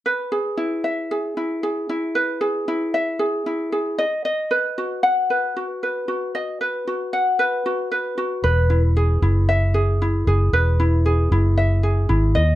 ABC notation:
X:1
M:4/4
L:1/8
Q:"Swing 16ths" 1/4=115
K:Elyd
V:1 name="Ukulele"
B G E e G E G E | B G E e G E G d | d B F f B F B F | d B F f B F B F |
B E G E e G E G | B E G E e G E d |]
V:2 name="Fingered electric bass" clef=bass
z8 | z8 | z8 | z8 |
E,,,3 F,,,4 F,,, | E,,,3 F,,,3 G,,, D,, |]